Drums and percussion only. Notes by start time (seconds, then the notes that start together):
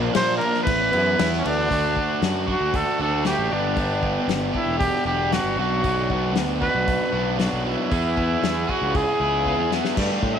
0.15 snare, crash
0.41 crash
0.54 snare
0.67 kick, crash
0.93 crash
1.19 snare, crash
1.33 snare
1.45 crash
1.71 kick, open hi-hat
1.97 kick
2.22 snare, open hi-hat
2.48 kick
2.74 kick, open hi-hat
3.25 snare, open hi-hat
3.76 kick, open hi-hat
4.03 kick
4.29 snare, open hi-hat
4.55 kick
4.80 kick, open hi-hat
5.32 snare, open hi-hat
5.84 kick, open hi-hat
6.10 kick
6.35 snare, open hi-hat
6.62 kick
6.88 kick, open hi-hat
7.39 snare, open hi-hat
7.91 kick, open hi-hat
8.17 kick
8.43 snare, open hi-hat
8.69 kick
8.95 kick, open hi-hat
9.46 kick
9.71 snare
9.85 snare
9.97 kick, crash
10.23 kick